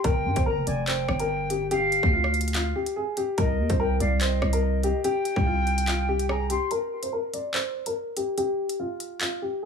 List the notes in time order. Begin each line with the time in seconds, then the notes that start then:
0.04 G1 A#4 G5, kick, closed hi-hat
0.25 G2
0.36 G1 C5, kick, closed hi-hat
0.46 A#4 A#5
0.57 F1
0.67 F1 D5 G#5, closed hi-hat
0.87 C5 G5, clap, closed hi-hat
1.09 G1, cross-stick
1.20 A#4, closed hi-hat
1.50 G4, closed hi-hat
1.71 G4 F5, closed hi-hat
1.92 closed hi-hat
2.03 D2, kick
2.13 F4
2.24 cross-stick
2.34 closed hi-hat
2.41 closed hi-hat
2.48 closed hi-hat
2.54 F4, clap, closed hi-hat
2.76 G4
2.86 closed hi-hat
2.96 G#4
3.17 G4, closed hi-hat
3.38 C2 A#4 D#5, kick, closed hi-hat
3.59 D#2
3.70 C2 C5, kick, closed hi-hat
3.80 A#4 G5
4.00 C2 D5 F5, closed hi-hat
4.21 C5 D#5, clap, closed hi-hat
4.42 C2, cross-stick
4.53 A#4, closed hi-hat
4.83 G4, closed hi-hat
5.04 G4 G5, closed hi-hat
5.25 closed hi-hat
5.36 C2, kick
5.46 F4
5.67 closed hi-hat
5.78 closed hi-hat
5.87 F4, clap, closed hi-hat
6.09 G4
6.20 closed hi-hat
6.29 G#4 A#5, cross-stick
6.50 G4 C6, closed hi-hat
6.71 A#4, closed hi-hat
7.03 C5, closed hi-hat
7.13 A#4
7.33 D5, closed hi-hat
7.54 C5, clap, closed hi-hat
7.86 A#4, closed hi-hat
8.17 G4, closed hi-hat
8.38 G4, closed hi-hat
8.69 closed hi-hat
8.80 F4
9.00 closed hi-hat
9.21 F4, clap, closed hi-hat
9.42 G4